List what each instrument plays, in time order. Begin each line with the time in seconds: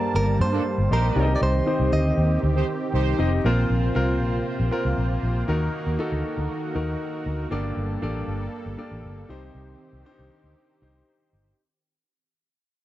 Already playing: grand piano G2 A#3 G4 C5 D5 A5, analog synth pad G3 A#3 A5, clean electric guitar A#4
0.14 fingered electric bass G1, clean electric guitar A#4
0.40 fingered electric bass G2, clean electric guitar C5
0.52 analog polysynth A#3 D4 A4
0.78 fingered electric bass G1
0.90 fingered electric bass A#1, analog polysynth D#4 G4 C5, clean electric guitar A#4
1.16 fingered electric bass C2, grand piano C3 C4 D#4 G4 D5, analog synth pad D#3 C4 G4
1.23 grand piano D#5
1.36 clean electric guitar D5
1.41 fingered electric bass C2, clean electric guitar C5
1.66 grand piano C4 D#4 G4 C5
1.80 fingered electric bass C2
1.92 fingered electric bass D2, clean electric guitar D#5
2.18 fingered electric bass D#2
2.43 fingered electric bass D2
2.55 analog polysynth D#4 G4 C5
2.93 fingered electric bass C2, analog polysynth D#4 G4 C5
3.18 fingered electric bass F1, grand piano C4 D#4 G4 D#5
3.44 fingered electric bass A#1, grand piano A#2 C4 F4 A#4, analog synth pad C3 A#3 F4, analog polysynth F4 C5
3.70 fingered electric bass A#1
3.95 fingered electric bass C2, grand piano C4 F4 A#4
4.21 fingered electric bass A#1
4.60 fingered electric bass A#1
4.71 grand piano C4 F4 A#4
4.85 fingered electric bass C2
4.98 fingered electric bass A#1
5.23 fingered electric bass A#1
5.48 fingered electric bass D#2, grand piano D#3 D#4 F#4 A#4, analog synth pad D#3 F#4, analog polysynth D#4 F#4 A#4
5.87 fingered electric bass D#2
5.99 grand piano D#4 F#4 A4
6.12 fingered electric bass D2
6.38 fingered electric bass D2
6.75 fingered electric bass D#2, grand piano D#4 F#4 A#4
7.26 fingered electric bass D2
7.51 fingered electric bass G1, grand piano G2 A#3 D4 G4 A4 D5, analog synth pad G3 A#3 A4, analog polysynth A#3 D4 A4
7.77 fingered electric bass G1
8.02 fingered electric bass A1, grand piano A#3 D4 G4 A4 D5
8.28 fingered electric bass G1
8.66 fingered electric bass G1
8.78 grand piano A#3 D4 G4 A4 D5
8.91 fingered electric bass A1
9.04 fingered electric bass G1
9.29 fingered electric bass C2, grand piano C3 D#4 G4 C5, analog synth pad D#3 C4 G4, analog polysynth D#4 G4 C5
9.55 fingered electric bass C2
9.93 fingered electric bass C2
10.05 grand piano D4 G4 C5
10.11 grand piano D#4
10.19 fingered electric bass C2
10.44 fingered electric bass D2
10.82 fingered electric bass C2, grand piano D#4 G4 C5
11.33 fingered electric bass G1